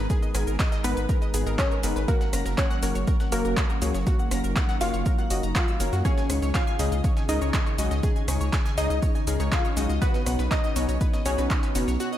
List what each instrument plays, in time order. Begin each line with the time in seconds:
Already playing: analog synth pad G#3 D#4 G#4 A#5
0.10 synth arpeggio sound G#4 G#5, kick, closed hi-hat, shaker
0.22 synth arpeggio sound D#5 D#6, shaker
0.35 analog synth bass G#1, synth pluck G#2 B3 D#4 G#4 A#4, synth arpeggio sound G#5 G#6, cross-stick, closed hi-hat, open hi-hat, shaker
0.47 analog synth bass G#1, synth arpeggio sound A#4 A#5, shaker
0.59 synth arpeggio sound D#5 D#6, kick, snare, clap, closed hi-hat, shaker
0.72 synth arpeggio sound D#5 D#6, snare, shaker
0.84 analog synth bass G#1, synth pluck G#2 B3 D#4 G#4 A#4 B4, synth arpeggio sound B4 B5, snare, closed hi-hat, open hi-hat, shaker
0.97 analog synth bass G#1, synth arpeggio sound B4 B5, closed hi-hat, shaker
1.09 synth arpeggio sound A#4 A#5, kick, closed hi-hat, shaker
1.22 synth arpeggio sound D#5 D#6, shaker
1.34 analog synth bass G#1, synth pluck G#2 B3 D#4 G#4 B4, synth arpeggio sound G#4 G#5, closed hi-hat, open hi-hat, shaker
1.47 analog synth bass G#1, synth pluck G#2 B3 D#4 G#4 A#4, synth arpeggio sound A#4 A#5, closed hi-hat, shaker
1.59 synth pluck C#4 C#5, synth arpeggio sound D#5 D#6, kick, snare, clap, closed hi-hat, shaker
1.71 synth arpeggio sound A#4 A#5, shaker
1.83 analog synth bass F#1, synth pluck B3 D#4 G#4 A#4, synth arpeggio sound B4 B5, closed hi-hat, open hi-hat, shaker
1.96 analog synth bass G#1, synth arpeggio sound B4 B5, snare, shaker
2.08 analog synth pad F#3 A#3 C#4, synth pluck A#3 A#4, synth arpeggio sound F#4 F#5, kick, closed hi-hat, shaker
2.21 synth arpeggio sound F#5 F#6, snare, shaker
2.33 analog synth bass F#1, synth pluck A#3 C#4 F#4 A#4, synth arpeggio sound A#5 A#6, cross-stick, closed hi-hat, open hi-hat, shaker
2.46 analog synth bass F#1, synth arpeggio sound A#4 A#5, snare, shaker
2.58 synth pluck C#4 C#5, synth arpeggio sound F#5 F#6, kick, snare, clap, closed hi-hat, shaker
2.71 synth arpeggio sound F#5 F#6, shaker
2.83 analog synth bass F#1, synth pluck A#3 C#4 F#4 A#4, synth arpeggio sound C#5 C#6, closed hi-hat, open hi-hat, shaker
2.95 analog synth bass F#1, synth arpeggio sound C#5 C#6, closed hi-hat, shaker
3.07 synth arpeggio sound A#4 A#5, kick, closed hi-hat, shaker
3.20 synth arpeggio sound F#5 F#6, snare, shaker
3.32 analog synth bass F#1, synth pluck A#3 C#4 F#4 A#4 C#5, synth arpeggio sound F#4 F#5, closed hi-hat, open hi-hat, shaker
3.45 analog synth bass F#1, synth pluck A#3 C#4 F#4 A#4, synth arpeggio sound A#4 A#5, shaker
3.57 synth arpeggio sound F#5 F#6, kick, snare, clap, closed hi-hat, shaker
3.70 synth arpeggio sound A#4 A#5, shaker
3.82 analog synth bass C#2, synth pluck A#3 C#4 F#4 G#4, synth arpeggio sound C#5 C#6, closed hi-hat, open hi-hat, shaker
3.95 analog synth bass F#1, synth arpeggio sound C#5 C#6, snare, shaker
4.07 analog synth pad D#4, synth arpeggio sound F#4 F#5, kick, closed hi-hat, shaker
4.19 synth arpeggio sound F#5 F#6, shaker
4.31 analog synth bass F#1, synth pluck A#3 C#4 F#4 A#4, synth arpeggio sound A#5 A#6, cross-stick, closed hi-hat, open hi-hat, shaker
4.44 analog synth bass F#1, synth arpeggio sound A#4 A#5, shaker
4.56 synth arpeggio sound F#5 F#6, kick, snare, clap, closed hi-hat, shaker
4.69 synth arpeggio sound F#5 F#6, snare, shaker
4.81 analog synth bass F#1, synth pluck A#3 C#4 F4 F#4 A#4 F5, synth arpeggio sound C#5 C#6, snare, closed hi-hat, open hi-hat, shaker
4.94 analog synth bass F#1, synth arpeggio sound C#5 C#6, closed hi-hat, shaker
5.06 synth arpeggio sound A#4 A#5, kick, closed hi-hat, shaker
5.18 synth arpeggio sound F#5 F#6, shaker
5.30 analog synth bass F#1, synth pluck A#3 C#4 F#4 D#5, synth arpeggio sound F#4 F#5, closed hi-hat, open hi-hat, shaker
5.43 analog synth bass F#1, synth arpeggio sound A#5 A#6, closed hi-hat, shaker
5.55 synth pluck F4 F5, synth arpeggio sound F#5 F#6, kick, snare, clap, closed hi-hat, shaker
5.68 synth arpeggio sound E6, shaker
5.80 analog synth bass F#1, synth pluck A#3 C#4 F#4 C#5, synth arpeggio sound A#4 A#5, closed hi-hat, open hi-hat, shaker
5.93 analog synth bass F#2, synth arpeggio sound F#4 F#5, snare, shaker
6.05 analog synth pad C#3 C#4 D#4 G#4, synth pluck C#4 C#5, synth arpeggio sound G#4 G#5, kick, closed hi-hat, shaker
6.18 synth arpeggio sound G#5 G#6, snare, shaker
6.30 analog synth bass C#2, synth pluck C#3 G#3 C#4 D#4 G#4, synth arpeggio sound C#6, cross-stick, closed hi-hat, open hi-hat, shaker
6.42 analog synth bass C#2, synth arpeggio sound C#5 C#6, snare, shaker
6.54 synth pluck F4 F5, synth arpeggio sound G#5 G#6, kick, snare, clap, closed hi-hat, shaker
6.67 synth arpeggio sound G#5 G#6, shaker
6.79 analog synth bass C#2, synth pluck C#3 G#3 C#4 D#4 G#4, synth arpeggio sound D#5 D#6, closed hi-hat, open hi-hat, shaker
6.92 analog synth bass C#2, synth arpeggio sound D#5 D#6, closed hi-hat, shaker
7.04 synth arpeggio sound C#5 C#6, kick, closed hi-hat, shaker
7.17 synth arpeggio sound G#5 G#6, snare, shaker
7.29 analog synth bass C#2, synth pluck C#3 G#3 C#4 D#4 A#4 D#5, synth arpeggio sound G#4 G#5, closed hi-hat, open hi-hat, shaker
7.42 analog synth bass C#2, synth pluck C#3 G#3 C#4 D#4 G#4, synth arpeggio sound C#5 C#6, shaker
7.54 synth arpeggio sound G#5 G#6, kick, snare, clap, closed hi-hat, shaker
7.66 synth arpeggio sound C#5 C#6, shaker
7.78 analog synth bass B1, synth pluck C#3 G#3 C#4 D#4 F#4, synth arpeggio sound D#5 D#6, closed hi-hat, open hi-hat, shaker
7.91 analog synth bass C#2, synth arpeggio sound D#5 D#6, snare, shaker
8.03 synth arpeggio sound G#4 G#5, kick, closed hi-hat, shaker
8.16 synth arpeggio sound G#5 G#6, shaker
8.28 analog synth bass C#2, synth pluck C#3 G#3 C#4 D#4 G#4, synth arpeggio sound C#6, cross-stick, closed hi-hat, open hi-hat, shaker
8.41 analog synth bass C#2, synth arpeggio sound C#5 C#6, shaker
8.53 synth arpeggio sound G#5 G#6, kick, snare, clap, closed hi-hat, shaker
8.65 synth arpeggio sound G#5 G#6, snare, shaker
8.78 analog synth bass C#2, synth pluck C#3 G#3 C#4 D#4 G#4 D#5, synth arpeggio sound D#5 D#6, snare, closed hi-hat, open hi-hat, shaker
8.90 analog synth bass C#2, synth arpeggio sound D#5 D#6, closed hi-hat, shaker
9.02 synth arpeggio sound C#5 C#6, kick, closed hi-hat, shaker
9.15 synth arpeggio sound G#5 G#6, shaker
9.27 analog synth bass C#2, synth pluck C#3 G#3 C#4 D#4 A#4, synth arpeggio sound G#4 G#5, closed hi-hat, open hi-hat, shaker
9.40 analog synth bass C#2, synth pluck C#3 G#3 C#4 D#4 G#4, synth arpeggio sound C#5 C#6, closed hi-hat, shaker
9.52 synth pluck F4 F5, synth arpeggio sound G#5 G#6, kick, snare, clap, closed hi-hat, shaker
9.65 synth arpeggio sound C#5 C#6, shaker
9.77 analog synth bass B1, synth pluck G#3 C#4 D#4 F#4, synth arpeggio sound D#5 D#6, closed hi-hat, open hi-hat, shaker
9.89 analog synth bass C#2, synth arpeggio sound D#5 D#6, snare, shaker
10.02 synth pluck B3 B4, analog synth pad B3, synth arpeggio sound F#4 F#5, kick, closed hi-hat, shaker
10.14 synth arpeggio sound D#5 D#6, snare, shaker
10.26 analog synth bass B1, synth pluck B2 B3 C#4 D#4 F#4, synth arpeggio sound F#5 F#6, cross-stick, closed hi-hat, open hi-hat, shaker
10.39 analog synth bass B1, synth arpeggio sound B4 B5, snare, shaker
10.51 synth pluck D#4 D#5, synth arpeggio sound D#5 D#6, kick, snare, clap, closed hi-hat, shaker
10.64 synth arpeggio sound D#5 D#6, shaker
10.76 analog synth bass B1, synth pluck B2 B3 C#4 D#4 F#4, synth arpeggio sound C#5 C#6, closed hi-hat, open hi-hat, shaker
10.89 analog synth bass B1, synth arpeggio sound C#5 C#6, closed hi-hat, shaker
11.01 synth arpeggio sound B4 B5, kick, closed hi-hat, shaker
11.13 synth arpeggio sound D#5 D#6, snare, shaker
11.26 analog synth bass B1, synth pluck B2 B3 C#4 D#4 G#4 C#5, synth arpeggio sound F#4 F#5, closed hi-hat, open hi-hat, shaker
11.38 analog synth bass B1, synth pluck B2 B3 C#4 D#4 F#4, synth arpeggio sound B4 B5, snare, shaker
11.50 synth arpeggio sound D#5 D#6, kick, clap, closed hi-hat, shaker
11.63 synth arpeggio sound B4 B5, closed hi-hat, shaker
11.75 analog synth bass F#1, synth pluck B2 B3 C#4 D#4 F#4, synth arpeggio sound C#5 C#6, closed hi-hat, open hi-hat, shaker
11.88 analog synth bass B1, synth arpeggio sound C#5 C#6, snare, shaker
12.00 synth arpeggio sound F#4 F#5, closed hi-hat, shaker
12.13 synth arpeggio sound D#5 D#6, shaker